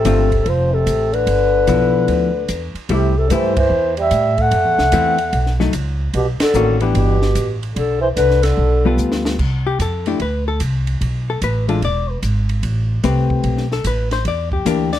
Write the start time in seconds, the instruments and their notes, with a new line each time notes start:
Already playing: trombone C3, clarinet A4
0.05 upright bass G1, hollow-body jazz guitar D3 A3 C4 F4, kick, hi-hat pedal, ride
0.32 kick, ride
0.45 upright bass F1, trombone F3, clarinet C5, kick, ride
0.73 trombone C3, clarinet A4
0.86 upright bass A1, kick, hi-hat pedal, ride
1.13 trombone D3, clarinet B4, ride
1.27 upright bass G1, kick, ride
1.67 upright bass B1, hollow-body jazz guitar F3 B3 E4, kick, hi-hat pedal, ride
2.08 upright bass D2, kick, ride
2.48 upright bass E2, kick, hi-hat pedal, ride
2.74 muted upright bass stroke, ride
2.89 upright bass C2, trombone C3, hollow-body jazz guitar G3 A3 E4, clarinet G4, kick, ride
3.17 trombone C3, clarinet A4
3.30 upright bass G2, trombone E3, hollow-body jazz guitar G3 A3 E4, clarinet C5, kick, hi-hat pedal, ride
3.57 trombone E3, clarinet C5, kick, ride
3.70 upright bass E2
3.97 trombone G3, ride
4.02 clarinet E5
4.11 upright bass A2, kick, hi-hat pedal, ride
4.38 trombone A3, clarinet F#5, kick, ride
4.51 upright bass F#2, ride
4.65 upright bass E2
4.78 upright bass C2, snare
4.92 upright bass E2, hollow-body jazz guitar E3 A3 C4, kick, hi-hat pedal, ride
5.18 ride
5.33 upright bass B1, kick, ride
5.46 snare
5.60 hollow-body jazz guitar F#3 A3 D#4, snare
5.73 upright bass C#2, kick, hi-hat pedal, ride
6.14 upright bass B1, trombone B2, clarinet G4, kick, ride
6.40 trombone D3, clarinet A4, muted upright bass stroke, snare, ride
6.54 upright bass A1, hollow-body jazz guitar D#3 A#3 C#4 F#4, hi-hat pedal
6.80 hollow-body jazz guitar E3 B3 D4 G4, ride
6.94 upright bass G1, trombone B2, clarinet G4, kick, ride
7.22 snare
7.35 upright bass A1, kick, hi-hat pedal, ride
7.63 ride
7.75 upright bass B1, trombone D3, clarinet A4, kick, ride
8.01 trombone E3, clarinet C5
8.16 upright bass C2, trombone D3, clarinet B4, kick, hi-hat pedal, ride
8.31 snare
8.43 trombone D3, clarinet A4, snare, ride
8.57 upright bass B1, kick
8.85 hollow-body jazz guitar G3 B3 F4 A4
8.97 upright bass D2, hi-hat pedal
9.12 snare
9.25 snare
9.39 upright bass C2, kick, crash
9.67 hollow-body jazz guitar G4
9.79 upright bass F2, hollow-body jazz guitar A4, kick, hi-hat pedal, ride
10.06 hollow-body jazz guitar A3 D4 E4 G4, ride
10.20 upright bass D2, hollow-body jazz guitar B4, kick, ride
10.48 hollow-body jazz guitar A4
10.60 upright bass C2, kick, hi-hat pedal, ride
10.87 ride
11.01 upright bass B1, kick, ride
11.30 hollow-body jazz guitar A4
11.41 upright bass A1, hollow-body jazz guitar B4, kick, hi-hat pedal, ride
11.68 hollow-body jazz guitar E3 G#3 D4 F4 A4, ride
11.82 upright bass E1, hollow-body jazz guitar D5, kick, ride
12.10 hollow-body jazz guitar B4
12.22 upright bass G#1, kick, hi-hat pedal, ride
12.49 ride
12.63 upright bass A1, kick, ride
13.03 upright bass C2, hollow-body jazz guitar A3 C4 G4 B4, kick, hi-hat pedal, ride
13.30 kick
13.44 upright bass B1, kick, ride
13.58 snare
13.72 hollow-body jazz guitar A4, snare
13.84 upright bass A1, hollow-body jazz guitar B4, kick, hi-hat pedal, ride
14.11 hollow-body jazz guitar C5, snare, ride
14.25 upright bass E2, hollow-body jazz guitar D5, kick, ride
14.52 hollow-body jazz guitar G4, kick
14.65 upright bass D2, hollow-body jazz guitar E3 A#3 D4 G4 A#4, kick, hi-hat pedal, ride
14.93 hollow-body jazz guitar D5, snare, ride